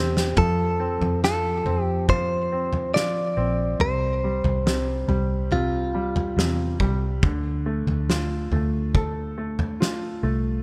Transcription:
0.00 0.34 E2 loud
0.00 0.35 C3 medium
0.00 0.34 A3 medium
0.00 0.40 C4 medium
0.00 0.33 F4 medium
0.00 0.41 G4 medium
0.17 snare medium
0.37 0.98 F2 loud
0.37 1.22 F3 medium
0.37 1.20 A4 medium
0.37 kick loud
0.37 floor tom medium
0.80 1.64 C4 medium
1.01 1.62 F2 medium
1.01 floor tom medium
1.24 2.07 F3 medium
1.24 1.82 A4 medium
1.24 snare medium
1.65 3.33 F2 medium
1.65 2.51 C4 medium
1.65 floor tom medium
1.82 2.06 G4 medium
2.08 2.93 F3 medium
2.08 2.94 C5 medium
2.08 kick loud
2.08 floor tom medium
2.52 3.35 C4 medium
2.73 floor tom medium
2.94 3.78 F3 medium
2.94 3.81 D5 medium
2.94 snare medium
3.37 3.77 A#1 medium
3.37 3.79 C4 medium
3.80 4.40 C2 medium
3.80 4.65 C3 medium
3.80 5.57 C5 loud
3.80 floor tom medium
4.24 5.07 G3 soft
4.44 5.05 C2 medium
4.44 floor tom medium
4.66 5.50 C3 medium
4.66 snare loud
5.08 6.33 C2 medium
5.08 5.93 G3 medium
5.08 floor tom medium
5.52 6.36 C3 medium
5.52 6.77 F4 medium
5.52 floor tom medium
5.94 6.79 G3 medium
6.16 floor tom medium
6.37 6.77 E2 medium
6.37 7.21 C3 medium
6.37 snare medium
6.80 7.20 C2 medium
6.80 7.22 G3 medium
6.80 kick medium
7.23 7.83 D2 loud
7.23 10.62 D3 medium
7.23 kick loud
7.23 floor tom medium
7.66 8.51 A3 medium
7.87 8.47 D2 medium
7.87 floor tom medium
8.09 9.77 F4 medium
8.09 snare medium
8.51 10.19 D2 medium
8.51 9.36 A3 medium
8.51 floor tom medium
8.95 10.62 A4 medium
8.95 kick medium
8.95 floor tom medium
9.38 10.22 A3 medium
9.59 floor tom medium
9.80 10.63 F4 medium
9.80 snare medium
10.23 10.63 C2 medium
10.23 10.63 A3 medium

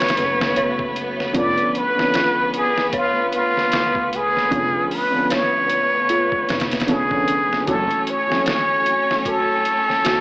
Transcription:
0.00 1.38 E3 medium
0.00 1.38 F#3 medium
0.00 1.38 A3 medium
0.00 10.21 A3 medium
0.00 7.69 B3 medium
0.00 1.37 C#4 medium
0.00 1.38 F#4 medium
0.00 7.69 B4 medium
0.00 0.57 C#5 medium
0.00 0.97 C#5 loud
0.00 10.21 C#6 medium
0.00 snare medium
0.00 closed hi-hat medium
0.08 snare medium
0.08 closed hi-hat medium
0.17 1.33 F#1 medium
0.17 snare soft
0.17 closed hi-hat medium
0.41 snare loud
0.56 0.95 C#5 medium
0.56 closed hi-hat medium
0.79 kick medium
0.96 closed hi-hat medium
1.20 snare medium
1.33 1.56 F1 loud
1.33 1.91 D3 medium
1.33 1.92 F3 medium
1.33 1.93 B3 medium
1.33 1.93 C#4 medium
1.33 1.61 F4 medium
1.33 kick loud
1.33 closed hi-hat medium
1.38 1.80 D5 loud
1.58 closed hi-hat soft
1.75 2.56 B4 loud
1.75 closed hi-hat medium
1.95 4.46 D3 medium
1.95 4.47 F3 medium
1.99 4.49 B3 medium
1.99 4.50 C#4 medium
1.99 snare medium
2.14 2.53 F4 medium
2.14 snare loud
2.14 closed hi-hat loud
2.54 2.93 G#4 loud
2.54 closed hi-hat medium
2.78 snare medium
2.93 3.32 F4 loud
2.93 3.31 C#5 medium
2.93 kick loud
2.93 closed hi-hat medium
3.33 4.17 F4 loud
3.33 closed hi-hat medium
3.57 snare soft
3.72 4.49 C#2 medium
3.72 3.98 F4 medium
3.72 snare loud
3.72 closed hi-hat medium
3.95 kick medium
4.13 4.96 G#4 loud
4.13 closed hi-hat medium
4.37 snare soft
4.51 4.72 F1 loud
4.51 5.08 D3 medium
4.51 5.08 F3 medium
4.51 5.09 B3 medium
4.51 5.10 C#4 medium
4.51 4.89 F4 medium
4.51 kick loud
4.51 closed hi-hat medium
4.91 5.36 B4 loud
4.91 open hi-hat medium
5.10 6.83 D3 medium
5.10 6.84 F3 medium
5.15 6.86 B3 medium
5.15 6.87 C#4 medium
5.30 5.68 C#5 medium
5.30 6.65 C#5 loud
5.30 snare loud
5.30 closed hi-hat medium
5.70 closed hi-hat medium
6.09 6.35 F4 medium
6.09 closed hi-hat medium
6.32 kick loud
6.49 7.65 F1 medium
6.49 snare medium
6.49 closed hi-hat medium
6.60 snare medium
6.60 closed hi-hat medium
6.71 snare medium
6.71 closed hi-hat medium
6.80 snare medium
6.80 closed hi-hat medium
6.87 7.05 D3 medium
6.87 7.06 F3 medium
6.87 7.06 B3 medium
6.87 7.07 C#4 loud
6.87 7.26 F4 medium
6.87 7.70 G#4 loud
6.87 closed hi-hat medium
7.10 7.63 D3 medium
7.10 7.63 F3 medium
7.10 7.64 B3 medium
7.10 7.64 C#4 loud
7.10 kick medium
7.28 closed hi-hat medium
7.53 snare medium
7.67 7.88 F#1 loud
7.67 8.24 E3 medium
7.67 8.24 F#3 medium
7.67 8.25 A3 medium
7.67 10.21 C#4 medium
7.67 8.25 C#4 medium
7.67 8.05 F#4 medium
7.67 8.11 A4 loud
7.67 10.21 C#5 medium
7.67 kick loud
7.67 closed hi-hat medium
7.91 closed hi-hat soft
8.07 8.48 C#5 medium
8.07 closed hi-hat medium
8.26 10.21 E3 medium
8.26 10.21 F#3 medium
8.31 10.21 A3 medium
8.31 10.21 C#4 medium
8.31 snare medium
8.46 8.84 C#5 medium
8.46 9.30 C#5 loud
8.46 snare loud
8.46 closed hi-hat medium
8.86 closed hi-hat medium
9.11 snare soft
9.25 9.51 F#4 medium
9.25 10.21 A4 loud
9.25 kick loud
9.25 closed hi-hat medium
9.65 closed hi-hat medium
9.90 snare soft
10.05 10.21 C#2 medium
10.05 10.21 F#4 medium
10.05 snare loud
10.05 closed hi-hat medium

